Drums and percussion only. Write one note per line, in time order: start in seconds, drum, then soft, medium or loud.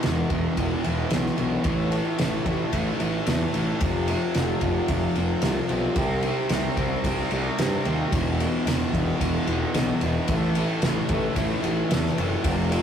0.03 snare loud
0.03 ride medium
0.30 kick medium
0.30 ride medium
0.57 kick medium
0.57 ride medium
0.84 ride medium
1.10 snare loud
1.10 ride medium
1.26 snare soft
1.38 ride medium
1.64 kick loud
1.64 ride medium
1.92 ride medium
2.18 snare loud
2.18 ride medium
2.46 kick medium
2.46 ride medium
2.73 kick medium
2.73 ride medium
3.00 ride medium
3.27 snare loud
3.27 ride loud
3.54 ride medium
3.81 kick loud
3.81 ride loud
4.08 ride medium
4.34 snare loud
4.34 ride medium
4.61 kick medium
4.61 ride medium
4.88 kick medium
4.88 ride medium
5.15 ride medium
5.42 snare loud
5.42 ride medium
5.69 ride medium
5.96 kick loud
5.96 ride medium
6.23 ride medium
6.49 snare loud
6.49 ride medium
6.77 kick medium
6.77 ride medium
7.04 kick medium
7.04 ride medium
7.31 ride medium
7.58 snare loud
7.58 ride medium
7.85 ride medium
8.12 kick loud
8.12 ride loud
8.40 ride medium
8.67 snare loud
8.67 ride loud
8.94 kick medium
8.94 ride medium
9.21 kick medium
9.21 ride medium
9.47 ride medium
9.74 snare loud
9.74 ride loud
10.01 ride medium
10.28 kick loud
10.28 ride loud
10.55 ride medium
10.82 snare loud
10.82 ride medium
11.09 kick medium
11.09 ride medium
11.36 kick medium
11.36 ride medium
11.64 ride medium
11.91 snare loud
11.91 ride loud
12.06 snare soft
12.18 ride medium
12.44 kick loud
12.44 ride loud
12.72 ride medium